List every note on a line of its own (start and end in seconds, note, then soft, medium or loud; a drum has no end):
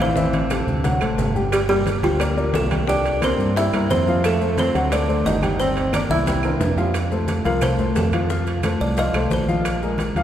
0.00 0.62 A1 medium
0.00 0.14 E3 medium
0.00 0.98 C4 medium
0.00 0.14 E4 medium
0.00 0.99 C5 medium
0.00 0.14 E5 medium
0.00 high conga medium
0.00 high timbale medium
0.00 claves medium
0.16 0.44 E3 medium
0.16 0.45 E4 medium
0.16 0.45 E5 medium
0.16 high bongo medium
0.16 high conga medium
0.16 maracas medium
0.33 high bongo soft
0.33 high conga medium
0.33 high timbale medium
0.33 maracas soft
0.50 0.78 G3 medium
0.50 0.79 G4 medium
0.50 0.79 A4 medium
0.50 high bongo medium
0.50 high conga medium
0.50 high timbale medium
0.50 claves medium
0.50 maracas medium
0.67 0.99 D2 medium
0.67 high bongo soft
0.67 low conga medium
0.67 maracas soft
0.84 0.98 F#3 medium
0.84 0.98 F#4 medium
0.84 0.99 F#5 medium
0.84 high bongo medium
0.84 low conga medium
0.84 high timbale medium
0.84 maracas medium
1.01 1.17 A1 medium
1.01 1.29 A3 medium
1.01 1.29 A4 medium
1.01 1.29 C5 medium
1.01 high bongo soft
1.01 high timbale medium
1.01 claves medium
1.01 maracas soft
1.18 1.97 G1 medium
1.18 high bongo medium
1.18 low bongo medium
1.18 low conga medium
1.18 low timbale medium
1.18 maracas medium
1.35 1.63 G3 medium
1.35 1.63 G4 medium
1.35 1.64 G5 medium
1.35 low conga medium
1.35 maracas soft
1.52 1.60 G3 medium
1.52 1.61 G4 medium
1.52 high bongo medium
1.52 high conga soft
1.52 high timbale medium
1.52 claves medium
1.52 maracas medium
1.69 2.01 G3 medium
1.69 1.97 A#3 medium
1.69 2.01 G4 medium
1.69 1.97 A#4 medium
1.69 1.97 D5 medium
1.69 high bongo soft
1.69 high conga soft
1.69 maracas soft
1.86 high bongo medium
1.86 high conga medium
1.86 high timbale medium
1.86 maracas medium
2.02 2.50 D2 medium
2.02 2.35 F3 medium
2.02 2.17 G3 medium
2.02 2.35 F4 medium
2.02 2.17 G4 medium
2.02 2.17 G5 medium
2.02 high bongo soft
2.02 high conga soft
2.02 high timbale medium
2.02 maracas soft
2.19 2.34 A#3 medium
2.19 2.34 A#4 medium
2.19 2.34 D5 medium
2.19 high bongo medium
2.19 high conga soft
2.19 high timbale medium
2.19 claves medium
2.19 maracas medium
2.36 2.65 A#3 medium
2.36 2.65 A#4 medium
2.36 2.65 D5 medium
2.36 high conga soft
2.36 maracas soft
2.53 3.33 C2 medium
2.53 2.86 A3 medium
2.53 2.86 A4 medium
2.53 high bongo medium
2.53 low bongo medium
2.53 high conga medium
2.53 high timbale medium
2.53 low timbale medium
2.53 maracas medium
2.70 2.85 G3 medium
2.70 2.85 G4 medium
2.70 2.85 G5 medium
2.70 high bongo soft
2.70 high conga medium
2.70 high timbale medium
2.70 claves medium
2.70 maracas soft
2.88 3.16 G3 medium
2.88 3.20 D4 medium
2.88 3.16 G4 medium
2.88 3.20 D5 medium
2.88 3.16 G5 medium
2.88 high bongo medium
2.88 high conga soft
2.88 maracas medium
3.05 high bongo soft
3.05 high conga soft
3.05 high timbale medium
3.05 maracas soft
3.21 3.50 A#3 medium
3.21 3.54 C4 medium
3.21 3.50 A#4 medium
3.21 3.50 C5 medium
3.21 3.55 C5 medium
3.21 high bongo medium
3.21 high conga medium
3.21 high timbale medium
3.21 claves medium
3.21 maracas medium
3.38 3.70 G2 medium
3.38 high bongo soft
3.38 high conga soft
3.38 maracas soft
3.56 3.70 G3 medium
3.56 3.88 E4 medium
3.56 3.70 G4 medium
3.56 3.88 E5 loud
3.56 3.70 G5 medium
3.56 high bongo medium
3.56 high conga soft
3.56 high timbale medium
3.56 maracas medium
3.73 3.89 G2 medium
3.73 4.01 A#3 medium
3.73 4.01 A#4 medium
3.73 4.02 C5 medium
3.73 high bongo soft
3.73 high conga soft
3.73 high timbale medium
3.73 claves medium
3.73 maracas soft
3.90 4.69 F2 medium
3.90 4.22 C4 medium
3.90 4.25 C5 medium
3.90 high bongo medium
3.90 low bongo medium
3.90 high conga medium
3.90 low timbale medium
3.90 maracas medium
4.07 4.35 F3 medium
4.07 4.35 F4 medium
4.07 4.35 F5 medium
4.07 maracas soft
4.24 4.55 A3 medium
4.24 4.60 A4 medium
4.24 high bongo medium
4.24 high conga soft
4.24 high timbale medium
4.24 claves medium
4.24 maracas medium
4.41 4.69 A3 medium
4.41 4.69 A4 medium
4.41 4.69 C5 medium
4.41 high bongo soft
4.41 high conga soft
4.41 maracas soft
4.57 4.90 C4 medium
4.57 4.90 C5 loud
4.57 high bongo medium
4.57 high conga medium
4.57 high timbale medium
4.57 maracas medium
4.74 5.22 D2 medium
4.74 4.88 F#3 medium
4.74 4.89 F#4 medium
4.74 4.89 F#5 medium
4.74 high bongo soft
4.74 high conga soft
4.74 high timbale medium
4.74 maracas soft
4.91 5.05 A3 medium
4.91 5.24 D4 medium
4.91 5.06 A4 medium
4.91 5.06 C5 medium
4.91 5.27 D5 medium
4.91 high bongo medium
4.91 high conga soft
4.91 high timbale medium
4.91 claves medium
4.91 maracas medium
5.08 5.36 A3 medium
5.08 5.36 A4 medium
5.08 5.36 C5 medium
5.08 high conga soft
5.08 maracas soft
5.25 6.04 G1 medium
5.25 5.58 D#4 medium
5.25 5.57 D#5 medium
5.25 high bongo medium
5.25 low bongo medium
5.25 high conga medium
5.25 high timbale medium
5.25 low timbale medium
5.25 maracas medium
5.42 5.56 G3 medium
5.42 5.56 G4 medium
5.42 5.56 G5 medium
5.42 high bongo soft
5.42 high conga medium
5.42 high timbale medium
5.42 claves medium
5.42 maracas soft
5.59 5.87 G3 medium
5.59 5.91 C4 medium
5.59 5.87 G4 medium
5.59 5.94 C5 medium
5.59 5.87 G5 medium
5.59 high bongo medium
5.59 high conga soft
5.59 maracas medium
5.76 high bongo soft
5.76 high conga soft
5.76 high timbale medium
5.76 maracas soft
5.92 6.21 A#3 medium
5.92 6.02 D4 medium
5.92 6.21 A#4 medium
5.92 6.21 D5 medium
5.92 6.01 D5 medium
5.92 high bongo medium
5.92 high conga medium
5.92 high timbale medium
5.92 claves medium
5.92 maracas medium
6.10 6.57 C2 medium
6.10 6.74 E4 medium
6.10 6.74 E5 medium
6.10 high bongo soft
6.10 high conga medium
6.10 maracas soft
6.26 6.41 G3 medium
6.26 6.41 G4 medium
6.26 6.41 G5 medium
6.26 high bongo medium
6.26 high conga loud
6.26 high timbale medium
6.26 maracas medium
6.43 6.72 A#3 medium
6.43 6.72 A#4 medium
6.43 6.72 C5 medium
6.43 high bongo soft
6.43 high timbale medium
6.43 claves medium
6.43 maracas soft
6.60 7.40 F2 medium
6.60 high bongo medium
6.60 low bongo medium
6.60 low conga loud
6.60 high timbale medium
6.60 maracas medium
6.77 6.92 F3 medium
6.77 6.92 F4 medium
6.77 6.92 F5 medium
6.77 low conga medium
6.77 low timbale medium
6.77 maracas soft
6.94 high bongo medium
6.94 high conga soft
6.94 high timbale medium
6.94 claves medium
6.94 maracas medium
7.11 7.39 A3 medium
7.11 7.40 A4 medium
7.11 7.40 C5 medium
7.11 high bongo soft
7.11 high conga soft
7.11 maracas soft
7.28 high bongo medium
7.28 high conga medium
7.28 high timbale medium
7.28 maracas medium
7.44 7.92 C2 medium
7.44 7.59 F3 medium
7.44 7.59 F4 medium
7.44 7.62 A#4 medium
7.44 7.59 F5 medium
7.44 high bongo soft
7.44 high conga soft
7.44 high timbale medium
7.44 maracas soft
7.61 7.76 A3 medium
7.61 7.76 A4 medium
7.61 7.76 C5 medium
7.61 7.94 C5 medium
7.61 high bongo medium
7.61 high conga soft
7.61 low conga medium
7.61 high timbale medium
7.61 claves medium
7.61 maracas medium
7.79 8.07 A3 medium
7.79 8.07 A4 medium
7.79 8.07 C5 medium
7.79 high conga soft
7.79 low conga medium
7.79 maracas soft
7.96 8.75 F2 medium
7.96 8.44 A4 medium
7.96 high bongo medium
7.96 low bongo medium
7.96 high conga medium
7.96 high timbale medium
7.96 low timbale medium
7.96 maracas medium
8.12 8.27 F3 medium
8.12 8.27 F4 medium
8.12 8.27 F5 medium
8.12 high bongo soft
8.12 high conga medium
8.12 high timbale medium
8.12 claves medium
8.12 maracas soft
8.30 8.58 F3 medium
8.30 8.58 F4 medium
8.30 8.58 F5 medium
8.30 high bongo medium
8.30 high conga soft
8.30 maracas medium
8.47 high bongo soft
8.47 high conga soft
8.47 high timbale medium
8.47 maracas soft
8.63 8.91 A3 medium
8.63 8.92 A4 medium
8.63 8.92 C5 medium
8.63 high bongo medium
8.63 high conga medium
8.63 high timbale medium
8.63 claves medium
8.63 maracas medium
8.80 9.12 C2 medium
8.80 8.97 D5 medium
8.80 high bongo soft
8.80 high conga soft
8.80 maracas soft
8.97 9.11 F3 medium
8.97 9.11 F4 medium
8.97 9.30 D#5 medium
8.97 9.11 F5 medium
8.97 high bongo medium
8.97 high conga soft
8.97 high timbale medium
8.97 maracas medium
9.14 9.30 C2 medium
9.14 9.42 A3 medium
9.14 9.42 A4 medium
9.14 9.42 C5 medium
9.14 high bongo soft
9.14 high conga soft
9.14 high timbale medium
9.14 claves medium
9.14 maracas soft
9.30 10.10 A#1 medium
9.30 9.80 C5 medium
9.30 high bongo medium
9.30 low bongo medium
9.30 high conga medium
9.30 maracas medium
9.47 9.76 F3 medium
9.47 9.76 F4 medium
9.47 9.76 F5 medium
9.47 high conga medium
9.47 maracas soft
9.65 high bongo medium
9.65 high timbale medium
9.65 claves medium
9.65 maracas medium
9.81 10.10 G#3 medium
9.81 10.10 G#4 medium
9.81 10.10 A#4 medium
9.81 high bongo soft
9.81 high conga soft
9.81 maracas soft
9.98 high bongo medium
9.98 high conga medium
9.98 high timbale medium
9.98 maracas medium
10.15 10.23 D2 medium
10.15 10.23 F3 medium
10.15 10.23 F4 medium
10.15 10.23 F5 medium
10.15 high bongo soft
10.15 high conga soft
10.15 high timbale medium
10.15 maracas soft